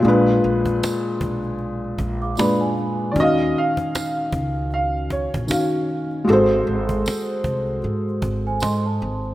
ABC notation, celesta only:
X:1
M:4/4
L:1/16
Q:"Swing 16ths" 1/4=77
K:Bbm
V:1 name="Celesta"
z8 z3 [f=d'] [=d_c'] [_ca]3 | z16 | z8 z3 [ca] [ec'] [c=a]3 |]